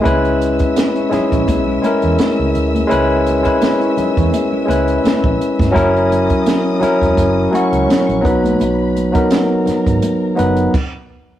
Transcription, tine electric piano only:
X:1
M:4/4
L:1/16
Q:"Swing 16ths" 1/4=84
K:C#dor
V:1 name="Tine electric piano"
[G,CEB]4 z2 [G,CEG]3 z [G,CEA]4 z2 | [G,CEB]2 z [G,CEB]4- [G,CEB] z2 [G,CEB]4 z2 | [F,CEA]4 z2 [F,CEA]3 z [F,CEF]4 [F,B,DB]2- | [F,B,DB]2 z [F,B,DA]4- [F,B,DA] z2 [F,B,DB]2 z4 |]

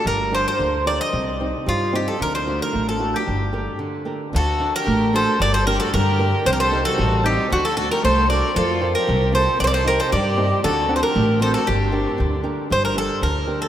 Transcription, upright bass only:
X:1
M:2/4
L:1/8
Q:1/4=114
K:Gm
V:1 name="Upright bass" clef=bass
G,,,2 D,,2 | C,,2 G,,2 | D,,2 A,,,2 | G,,,2 z2 |
D,,2 A,,,2 | G,,,2 G,,2 | C,,2 A,,,2 | D,,2 C,,2 |
F,,2 C,,2 | C,,2 G,,2 | D,,2 A,,,2 | G,,,2 D,,2 |
G,,,2 D,,2 |]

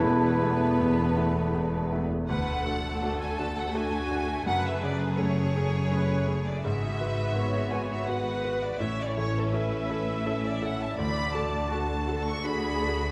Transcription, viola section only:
X:1
M:3/4
L:1/8
Q:1/4=83
K:Dlyd
V:1 name="Viola section"
B,4- B, z | B A3 F2 | B2 A, G B A, | G B c2 B2 |
c2 e4 | d2 F A G2 |]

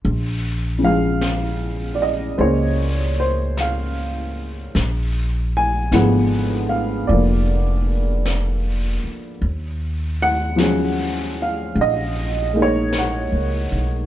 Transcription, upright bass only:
X:1
M:4/4
L:1/8
Q:"Swing" 1/4=51
K:Bbm
V:1 name="Upright bass" clef=bass
B,,,4 D,,4 | B,,,2 A,,,2 F,,,3 z | E,,4 B,,,2- (3B,,, D,, _C,, |]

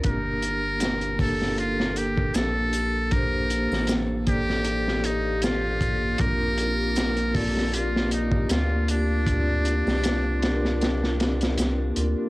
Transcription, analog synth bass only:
X:1
M:4/4
L:1/16
Q:"Swing 16ths" 1/4=78
K:Gm
V:1 name="Analog synth bass" clef=bass
G,,,12 B,,,4- | B,,,3 A,,,12- A,,, | B,,,12 D,,4- | D,,3 C,,8- C,, C,,2 D,, z |]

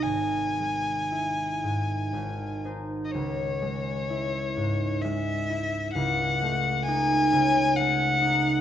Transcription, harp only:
X:1
M:3/4
L:1/8
Q:1/4=64
K:C#m
V:1 name="Harp" clef=bass
[G,,,G,] G, E G,, G,,, [D^B] | C,, G, E G,, G, E | C,, A, D C, A, D |]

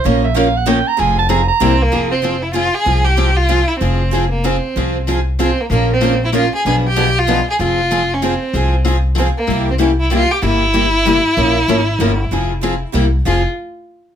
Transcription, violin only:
X:1
M:3/4
L:1/8
Q:"Swing" 1/4=191
K:Fm
V:1 name="Violin"
z6 | z4 C B,- | B, C2 =E F A- | A G2 F2 =E |
C3 B, C2- | C2 z2 C B, | B, C2 =E F A | ^G =G2 F2 ^G |
F3 D C2- | C2 z2 C B,- | B, C D =E F G | =E6- |
=E6- | =E4 z2 | F z4 z |]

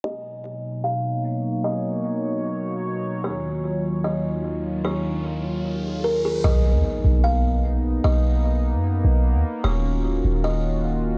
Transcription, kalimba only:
X:1
M:4/4
L:1/8
Q:1/4=150
K:Blyd
V:1 name="Kalimba"
d4 e2 z2 | d6 z2 | c4 d2 z2 | c6 A G |
d4 e2 z2 | d6 z2 | c4 d2 z2 |]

